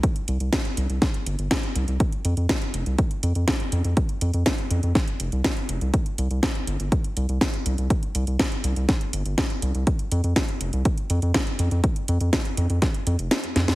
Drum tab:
HH |xxxxxxxxxxxxxxxx|xxxxxxxxxxxxxxxx|xxxxxxxxxxxxxxxx|xxxxxxxxxxxxxxxx|
SD |----o---o---o---|----o-------o---|----o---o---o---|----o-------o---|
BD |o---o---o---o---|o---o---o---o---|o---o---o---o---|o---o---o---o---|

HH |xxxxxxxxxxxxxxxx|xxxxxxxxxxxxxxxx|xxxxxxxxxxxxxxxx|
SD |----o---o---o---|----o-------o---|----o---o---o-oo|
BD |o---o---o---o---|o---o---o---o---|o---o---o-------|